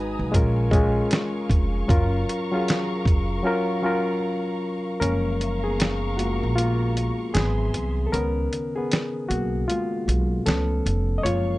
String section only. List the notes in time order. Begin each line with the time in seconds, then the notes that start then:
Already playing: B4 G#5 A#5 D#6
0.33 A#4 F5 C#6
1.89 A#4 A#5
3.45 A#5
5.00 A#4 F5 A#5 C#6
7.34 G#4 E5 C6
11.24 A#4 F5 C#6